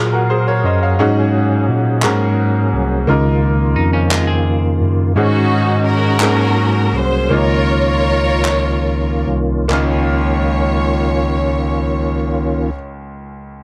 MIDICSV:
0, 0, Header, 1, 7, 480
1, 0, Start_track
1, 0, Key_signature, -5, "major"
1, 0, Tempo, 694444
1, 689, Time_signature, 6, 3, 24, 8
1, 4049, Tempo, 720288
1, 5009, Tempo, 777202
1, 5969, Tempo, 864553
1, 8621, End_track
2, 0, Start_track
2, 0, Title_t, "String section"
2, 0, Program_c, 0, 48
2, 3571, Note_on_c, 0, 61, 60
2, 3575, Note_on_c, 0, 63, 53
2, 3585, Note_on_c, 0, 66, 82
2, 4031, Note_off_c, 0, 66, 0
2, 4059, Note_off_c, 0, 61, 0
2, 4066, Note_on_c, 0, 66, 68
2, 4067, Note_on_c, 0, 61, 69
2, 4067, Note_on_c, 0, 70, 81
2, 4261, Note_off_c, 0, 63, 0
2, 4745, Note_off_c, 0, 66, 0
2, 4746, Note_off_c, 0, 61, 0
2, 4773, Note_off_c, 0, 70, 0
2, 4779, Note_on_c, 0, 72, 86
2, 5016, Note_off_c, 0, 72, 0
2, 5023, Note_on_c, 0, 65, 72
2, 5023, Note_on_c, 0, 73, 101
2, 5024, Note_on_c, 0, 70, 72
2, 6184, Note_off_c, 0, 65, 0
2, 6185, Note_off_c, 0, 70, 0
2, 6206, Note_off_c, 0, 73, 0
2, 6452, Note_on_c, 0, 73, 72
2, 8117, Note_off_c, 0, 73, 0
2, 8621, End_track
3, 0, Start_track
3, 0, Title_t, "Grand piano"
3, 0, Program_c, 1, 0
3, 0, Control_c, 1, 64, 127
3, 0, Note_on_c, 1, 58, 64
3, 0, Note_on_c, 1, 65, 48
3, 0, Note_on_c, 1, 66, 65
3, 0, Note_on_c, 1, 68, 50
3, 82, Note_off_c, 1, 68, 0
3, 84, Note_off_c, 1, 65, 0
3, 89, Note_on_c, 1, 70, 58
3, 91, Note_off_c, 1, 66, 0
3, 91, Note_on_c, 1, 66, 49
3, 203, Note_off_c, 1, 70, 0
3, 204, Note_off_c, 1, 66, 0
3, 206, Note_on_c, 1, 72, 62
3, 213, Note_on_c, 1, 68, 52
3, 322, Note_off_c, 1, 72, 0
3, 325, Note_off_c, 1, 68, 0
3, 330, Note_on_c, 1, 73, 69
3, 336, Note_on_c, 1, 70, 58
3, 444, Note_off_c, 1, 73, 0
3, 446, Note_off_c, 1, 70, 0
3, 451, Note_on_c, 1, 75, 56
3, 456, Note_on_c, 1, 72, 50
3, 564, Note_off_c, 1, 75, 0
3, 567, Note_off_c, 1, 72, 0
3, 572, Note_on_c, 1, 77, 53
3, 576, Note_on_c, 1, 73, 46
3, 657, Note_off_c, 1, 58, 0
3, 684, Note_on_c, 1, 61, 68
3, 686, Note_on_c, 1, 63, 65
3, 689, Note_on_c, 1, 44, 62
3, 689, Note_on_c, 1, 66, 63
3, 693, Note_on_c, 1, 68, 75
3, 698, Control_c, 1, 64, 0
3, 798, Note_off_c, 1, 77, 0
3, 800, Note_off_c, 1, 73, 0
3, 807, Control_c, 1, 64, 127
3, 1381, Note_off_c, 1, 44, 0
3, 1390, Note_off_c, 1, 61, 0
3, 1396, Note_off_c, 1, 66, 0
3, 1397, Note_off_c, 1, 68, 0
3, 1400, Note_on_c, 1, 61, 71
3, 1405, Note_on_c, 1, 44, 67
3, 1407, Note_off_c, 1, 63, 0
3, 1407, Note_on_c, 1, 66, 65
3, 1407, Note_on_c, 1, 68, 66
3, 1411, Note_on_c, 1, 70, 78
3, 1418, Control_c, 1, 64, 0
3, 1545, Control_c, 1, 64, 127
3, 2098, Note_off_c, 1, 44, 0
3, 2124, Note_off_c, 1, 61, 0
3, 2124, Note_on_c, 1, 58, 72
3, 2127, Note_off_c, 1, 66, 0
3, 2127, Note_off_c, 1, 68, 0
3, 2129, Note_off_c, 1, 70, 0
3, 2130, Note_on_c, 1, 49, 68
3, 2130, Note_on_c, 1, 63, 65
3, 2134, Note_on_c, 1, 65, 60
3, 2137, Control_c, 1, 64, 0
3, 2140, Note_on_c, 1, 70, 76
3, 2245, Control_c, 1, 64, 127
3, 2820, Note_off_c, 1, 49, 0
3, 3536, Note_off_c, 1, 58, 0
3, 3539, Note_off_c, 1, 63, 0
3, 3541, Note_off_c, 1, 65, 0
3, 3544, Note_off_c, 1, 70, 0
3, 3566, Note_on_c, 1, 61, 54
3, 3568, Note_on_c, 1, 63, 49
3, 3570, Note_on_c, 1, 44, 54
3, 3570, Note_on_c, 1, 66, 51
3, 3575, Control_c, 1, 64, 0
3, 3575, Note_on_c, 1, 68, 62
3, 3687, Control_c, 1, 64, 127
3, 4259, Note_off_c, 1, 44, 0
3, 4280, Note_off_c, 1, 66, 0
3, 4281, Note_off_c, 1, 68, 0
3, 4283, Note_off_c, 1, 61, 0
3, 4285, Note_off_c, 1, 63, 0
3, 4286, Note_on_c, 1, 58, 59
3, 4286, Note_on_c, 1, 60, 40
3, 4288, Note_on_c, 1, 44, 58
3, 4290, Note_on_c, 1, 66, 56
3, 4291, Note_on_c, 1, 68, 61
3, 4293, Control_c, 1, 64, 0
3, 4329, Note_off_c, 1, 60, 0
3, 4329, Note_on_c, 1, 61, 55
3, 4420, Control_c, 1, 64, 127
3, 4984, Note_off_c, 1, 44, 0
3, 4997, Note_off_c, 1, 58, 0
3, 5002, Note_off_c, 1, 61, 0
3, 5007, Note_on_c, 1, 58, 60
3, 5012, Note_off_c, 1, 66, 0
3, 5012, Note_off_c, 1, 68, 0
3, 5012, Note_on_c, 1, 61, 52
3, 5016, Control_c, 1, 64, 0
3, 5016, Note_on_c, 1, 49, 57
3, 5017, Note_on_c, 1, 63, 55
3, 5023, Note_on_c, 1, 65, 61
3, 5133, Control_c, 1, 64, 127
3, 5699, Note_off_c, 1, 49, 0
3, 6415, Note_off_c, 1, 58, 0
3, 6417, Note_off_c, 1, 61, 0
3, 6419, Note_off_c, 1, 63, 0
3, 6422, Note_off_c, 1, 65, 0
3, 6429, Note_on_c, 1, 58, 64
3, 6438, Note_on_c, 1, 61, 59
3, 6442, Note_on_c, 1, 37, 68
3, 6444, Control_c, 1, 64, 0
3, 6446, Note_on_c, 1, 63, 58
3, 6457, Note_on_c, 1, 65, 72
3, 6530, Control_c, 1, 64, 127
3, 8094, Note_off_c, 1, 58, 0
3, 8103, Note_off_c, 1, 61, 0
3, 8107, Note_off_c, 1, 37, 0
3, 8111, Note_off_c, 1, 63, 0
3, 8122, Note_off_c, 1, 65, 0
3, 8621, End_track
4, 0, Start_track
4, 0, Title_t, "Clean electric guitar"
4, 0, Program_c, 2, 27
4, 2599, Note_on_c, 2, 63, 66
4, 2715, Note_off_c, 2, 63, 0
4, 2718, Note_on_c, 2, 61, 76
4, 2726, Note_on_c, 2, 53, 59
4, 2835, Note_on_c, 2, 56, 57
4, 2836, Note_off_c, 2, 61, 0
4, 2837, Note_on_c, 2, 65, 60
4, 2840, Note_off_c, 2, 53, 0
4, 2951, Note_off_c, 2, 65, 0
4, 2954, Note_on_c, 2, 68, 65
4, 2955, Note_off_c, 2, 56, 0
4, 2959, Note_on_c, 2, 60, 54
4, 3531, Note_off_c, 2, 68, 0
4, 3534, Note_off_c, 2, 60, 0
4, 8621, End_track
5, 0, Start_track
5, 0, Title_t, "Tonewheel organ"
5, 0, Program_c, 3, 16
5, 0, Note_on_c, 3, 54, 62
5, 0, Note_on_c, 3, 68, 67
5, 0, Note_on_c, 3, 70, 45
5, 0, Note_on_c, 3, 77, 54
5, 672, Note_off_c, 3, 70, 0
5, 672, Note_off_c, 3, 77, 0
5, 690, Note_on_c, 3, 61, 59
5, 695, Note_on_c, 3, 63, 54
5, 1404, Note_off_c, 3, 63, 0
5, 1408, Note_on_c, 3, 58, 54
5, 2096, Note_off_c, 3, 54, 0
5, 2097, Note_off_c, 3, 68, 0
5, 2114, Note_off_c, 3, 61, 0
5, 2123, Note_on_c, 3, 51, 57
5, 2127, Note_on_c, 3, 65, 67
5, 2128, Note_on_c, 3, 49, 56
5, 3544, Note_off_c, 3, 58, 0
5, 3549, Note_off_c, 3, 51, 0
5, 3551, Note_off_c, 3, 49, 0
5, 3551, Note_off_c, 3, 65, 0
5, 3568, Note_on_c, 3, 61, 55
5, 3570, Note_on_c, 3, 66, 64
5, 3572, Note_on_c, 3, 51, 58
5, 3574, Note_on_c, 3, 56, 53
5, 4279, Note_off_c, 3, 66, 0
5, 4280, Note_off_c, 3, 51, 0
5, 4280, Note_off_c, 3, 56, 0
5, 4293, Note_on_c, 3, 54, 55
5, 4297, Note_on_c, 3, 58, 44
5, 4298, Note_on_c, 3, 68, 60
5, 5006, Note_off_c, 3, 54, 0
5, 5006, Note_off_c, 3, 58, 0
5, 5009, Note_off_c, 3, 68, 0
5, 5010, Note_on_c, 3, 65, 62
5, 5012, Note_on_c, 3, 51, 60
5, 5014, Note_on_c, 3, 58, 58
5, 6416, Note_off_c, 3, 61, 0
5, 6425, Note_off_c, 3, 65, 0
5, 6426, Note_off_c, 3, 51, 0
5, 6427, Note_off_c, 3, 58, 0
5, 6440, Note_on_c, 3, 65, 64
5, 6441, Note_on_c, 3, 61, 50
5, 6443, Note_on_c, 3, 51, 58
5, 6444, Note_on_c, 3, 58, 50
5, 8105, Note_off_c, 3, 65, 0
5, 8106, Note_off_c, 3, 61, 0
5, 8108, Note_off_c, 3, 51, 0
5, 8109, Note_off_c, 3, 58, 0
5, 8621, End_track
6, 0, Start_track
6, 0, Title_t, "Tine electric piano"
6, 0, Program_c, 4, 4
6, 0, Note_on_c, 4, 46, 83
6, 422, Note_off_c, 4, 46, 0
6, 443, Note_on_c, 4, 42, 84
6, 666, Note_off_c, 4, 42, 0
6, 688, Note_on_c, 4, 44, 96
6, 1140, Note_off_c, 4, 44, 0
6, 1168, Note_on_c, 4, 46, 78
6, 1389, Note_off_c, 4, 46, 0
6, 1405, Note_on_c, 4, 44, 93
6, 1859, Note_off_c, 4, 44, 0
6, 1887, Note_on_c, 4, 36, 81
6, 2108, Note_off_c, 4, 36, 0
6, 2124, Note_on_c, 4, 37, 101
6, 2578, Note_off_c, 4, 37, 0
6, 2601, Note_on_c, 4, 41, 84
6, 3295, Note_off_c, 4, 41, 0
6, 3322, Note_on_c, 4, 42, 76
6, 3544, Note_off_c, 4, 42, 0
6, 3562, Note_on_c, 4, 44, 87
6, 4255, Note_off_c, 4, 44, 0
6, 4282, Note_on_c, 4, 44, 87
6, 4736, Note_off_c, 4, 44, 0
6, 4761, Note_on_c, 4, 36, 82
6, 4988, Note_off_c, 4, 36, 0
6, 5010, Note_on_c, 4, 37, 93
6, 6179, Note_off_c, 4, 37, 0
6, 6199, Note_on_c, 4, 36, 74
6, 6418, Note_off_c, 4, 36, 0
6, 6435, Note_on_c, 4, 37, 80
6, 8100, Note_off_c, 4, 37, 0
6, 8621, End_track
7, 0, Start_track
7, 0, Title_t, "Drums"
7, 1400, Note_on_c, 9, 39, 94
7, 1469, Note_off_c, 9, 39, 0
7, 2843, Note_on_c, 9, 39, 89
7, 2913, Note_off_c, 9, 39, 0
7, 4278, Note_on_c, 9, 39, 88
7, 4345, Note_off_c, 9, 39, 0
7, 5720, Note_on_c, 9, 39, 84
7, 5781, Note_off_c, 9, 39, 0
7, 6441, Note_on_c, 9, 39, 68
7, 6496, Note_off_c, 9, 39, 0
7, 8621, End_track
0, 0, End_of_file